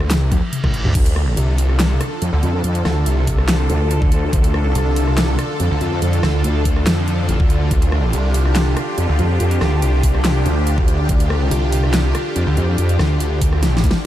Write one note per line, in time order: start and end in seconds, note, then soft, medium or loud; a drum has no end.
0.00 0.12 D2 loud
0.00 cross-stick medium
0.10 0.30 C#2 loud
0.10 snare loud
0.10 clap loud
0.10 closed hi-hat medium
0.10 reverse cymbal medium
0.32 0.41 D2 loud
0.32 kick medium
0.32 closed hi-hat medium
0.32 high tom medium
0.53 closed hi-hat medium
0.53 mid tom medium
0.64 0.83 A1 loud
0.64 kick loud
0.64 cross-stick medium
0.64 mid tom medium
0.74 closed hi-hat medium
0.85 0.93 D2 loud
0.85 mid tom medium
0.95 1.36 D2 medium
0.95 14.06 D3 medium
0.95 14.06 D4 medium
0.95 14.06 F4 medium
0.95 7.67 A4 medium
0.95 kick loud
0.95 closed hi-hat medium
0.95 crash medium
1.06 closed hi-hat medium
1.16 cross-stick medium
1.37 1.99 C2 loud
1.37 closed hi-hat medium
1.58 open hi-hat loud
1.69 cross-stick soft
1.80 snare loud
1.80 clap medium
1.80 closed hi-hat medium
2.01 cross-stick medium
2.01 closed hi-hat medium
2.22 2.31 F2 loud
2.22 closed hi-hat medium
2.33 2.41 D2 medium
2.43 2.62 F2 loud
2.43 closed hi-hat medium
2.64 2.83 F2 medium
2.64 closed hi-hat medium
2.75 closed hi-hat medium
2.85 3.05 D2 medium
2.85 cross-stick medium
2.85 snare medium
3.06 3.68 C2 loud
3.06 closed hi-hat medium
3.27 kick medium
3.27 open hi-hat medium
3.38 cross-stick medium
3.48 snare loud
3.48 clap loud
3.48 closed hi-hat medium
3.70 4.31 D2 loud
3.70 closed hi-hat medium
3.91 closed hi-hat medium
4.02 kick loud
4.12 closed hi-hat medium
4.33 4.74 D2 loud
4.33 kick loud
4.33 closed hi-hat medium
4.44 closed hi-hat medium
4.54 cross-stick medium
4.75 5.37 C2 loud
4.75 closed hi-hat medium
4.96 open hi-hat medium
5.07 cross-stick medium
5.17 snare loud
5.17 clap medium
5.17 closed hi-hat medium
5.39 cross-stick medium
5.39 closed hi-hat medium
5.60 5.69 F2 loud
5.60 closed hi-hat medium
5.71 5.79 D2 loud
5.81 6.00 F2 loud
5.81 closed hi-hat soft
6.02 6.22 F2 loud
6.02 closed hi-hat medium
6.13 closed hi-hat soft
6.23 6.43 D2 loud
6.23 cross-stick medium
6.23 snare medium
6.44 6.85 D2 medium
6.44 closed hi-hat medium
6.65 kick medium
6.65 open hi-hat medium
6.76 cross-stick medium
6.87 7.27 F2 loud
6.87 snare loud
6.87 clap loud
6.87 closed hi-hat medium
7.08 closed hi-hat medium
7.29 7.38 A1 loud
7.29 closed hi-hat medium
7.40 7.69 D2 loud
7.40 kick loud
7.50 closed hi-hat soft
7.71 8.12 D2 loud
7.71 14.06 G4 medium
7.71 kick loud
7.71 closed hi-hat medium
7.82 closed hi-hat medium
7.92 cross-stick medium
8.13 8.75 C2 loud
8.13 closed hi-hat medium
8.34 open hi-hat medium
8.45 cross-stick medium
8.55 snare loud
8.55 clap medium
8.55 closed hi-hat medium
8.77 cross-stick medium
8.77 closed hi-hat medium
8.98 9.07 F2 loud
8.98 closed hi-hat medium
9.09 9.17 D2 loud
9.19 9.38 F2 loud
9.19 closed hi-hat soft
9.40 9.60 F2 loud
9.40 closed hi-hat medium
9.51 closed hi-hat medium
9.61 9.81 D2 loud
9.61 cross-stick medium
9.61 snare medium
9.82 10.44 C2 loud
9.82 closed hi-hat medium
10.03 kick medium
10.03 open hi-hat loud
10.15 cross-stick medium
10.25 snare loud
10.25 clap medium
10.25 closed hi-hat medium
10.46 11.07 D2 medium
10.46 closed hi-hat medium
10.67 closed hi-hat medium
10.78 kick loud
10.88 closed hi-hat medium
11.09 11.50 D2 loud
11.09 kick loud
11.09 closed hi-hat medium
11.20 closed hi-hat medium
11.30 cross-stick medium
11.51 12.13 C2 medium
11.51 closed hi-hat medium
11.72 open hi-hat loud
11.84 cross-stick medium
11.94 snare loud
11.94 clap medium
11.94 closed hi-hat medium
12.15 cross-stick medium
12.15 closed hi-hat medium
12.36 12.45 F2 medium
12.36 closed hi-hat medium
12.47 12.55 D2 loud
12.57 12.76 F2 medium
12.57 closed hi-hat medium
12.78 12.98 F2 loud
12.78 closed hi-hat medium
12.89 closed hi-hat medium
12.99 13.19 D2 loud
12.99 cross-stick medium
12.99 snare medium
13.20 13.82 D2 loud
13.20 closed hi-hat medium
13.41 kick medium
13.41 open hi-hat loud
13.53 cross-stick medium
13.63 snare medium
13.63 closed hi-hat medium
13.77 snare medium
13.84 13.93 D2 medium
13.84 kick medium
13.84 closed hi-hat medium
13.91 snare medium